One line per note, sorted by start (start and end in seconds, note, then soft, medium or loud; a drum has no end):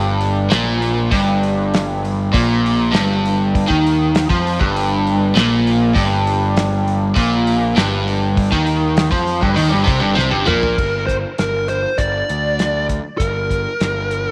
0.00 0.47 G1 medium
0.00 0.50 G2 medium
0.21 open hi-hat medium
0.50 1.08 A#1 medium
0.50 1.11 A#2 loud
0.50 snare loud
0.50 open hi-hat medium
0.82 open hi-hat medium
1.11 2.29 G1 medium
1.11 2.32 G2 loud
1.11 kick loud
1.11 open hi-hat medium
1.43 open hi-hat soft
1.74 snare loud
1.74 open hi-hat medium
2.05 open hi-hat medium
2.33 2.90 A#1 medium
2.33 2.93 A#2 loud
2.33 kick loud
2.33 open hi-hat medium
2.66 open hi-hat medium
2.92 3.65 G1 medium
2.92 3.68 G2 loud
2.92 snare loud
2.92 open hi-hat medium
3.25 open hi-hat medium
3.55 kick loud
3.55 open hi-hat medium
3.68 4.26 D#2 medium
3.68 4.28 D#3 loud
3.68 kick medium
3.87 open hi-hat medium
4.15 snare loud
4.15 open hi-hat medium
4.30 4.58 F2 medium
4.30 4.59 F3 medium
4.30 kick loud
4.47 open hi-hat medium
4.60 5.31 G1 medium
4.60 5.34 G2 loud
4.60 kick loud
4.77 open hi-hat medium
5.07 open hi-hat medium
5.35 5.92 A#1 medium
5.35 5.95 A#2 loud
5.35 snare loud
5.35 open hi-hat medium
5.67 open hi-hat medium
5.94 7.12 G1 medium
5.94 7.15 G2 loud
5.94 kick loud
5.94 open hi-hat medium
6.27 open hi-hat medium
6.57 snare loud
6.57 open hi-hat medium
6.88 open hi-hat soft
7.15 7.73 A#1 medium
7.15 7.75 A#2 loud
7.15 kick loud
7.15 open hi-hat medium
7.47 open hi-hat medium
7.76 8.48 G1 medium
7.76 8.51 G2 loud
7.76 snare loud
7.76 open hi-hat medium
8.08 open hi-hat medium
8.37 kick loud
8.37 open hi-hat medium
8.52 9.09 D#2 medium
8.52 9.11 D#3 loud
8.52 kick medium
8.67 open hi-hat medium
8.97 snare loud
8.97 open hi-hat medium
9.11 9.40 F2 medium
9.11 9.41 F3 loud
9.11 kick medium
9.27 open hi-hat medium
9.41 9.56 G1 medium
9.41 9.56 G2 medium
9.41 kick loud
9.55 9.72 D#2 loud
9.55 9.70 D#3 medium
9.55 open hi-hat medium
9.69 9.85 G2 medium
9.73 9.86 G1 medium
9.84 10.01 C2 medium
9.84 10.00 C3 medium
9.84 open hi-hat medium
9.88 kick loud
10.00 10.16 G1 medium
10.00 10.15 G2 medium
10.15 10.31 C2 medium
10.15 10.31 C3 medium
10.15 snare medium
10.31 10.47 G1 medium
10.31 10.46 G2 loud
10.46 10.76 A#1 medium
10.46 10.76 A#2 medium
10.46 11.06 A#4 medium
10.46 mid tom medium
10.63 floor tom medium
10.78 11.24 G1 medium
10.78 kick loud
10.78 crash medium
11.06 11.15 C5 medium
11.06 kick medium
11.06 closed hi-hat medium
11.38 11.85 G1 medium
11.38 11.69 A#4 medium
11.38 snare loud
11.38 closed hi-hat medium
11.68 12.00 C5 medium
11.68 closed hi-hat medium
11.98 12.21 G1 medium
11.98 12.85 D5 medium
11.98 kick medium
11.98 closed hi-hat medium
12.29 12.98 D2 medium
12.29 closed hi-hat medium
12.59 snare loud
12.59 closed hi-hat medium
12.89 kick medium
12.89 closed hi-hat medium
13.18 13.66 G1 medium
13.18 14.31 A#4 loud
13.18 kick medium
13.18 closed hi-hat medium
13.51 kick medium
13.51 closed hi-hat medium
13.80 14.27 G1 medium
13.80 snare loud
13.80 closed hi-hat medium
14.11 closed hi-hat medium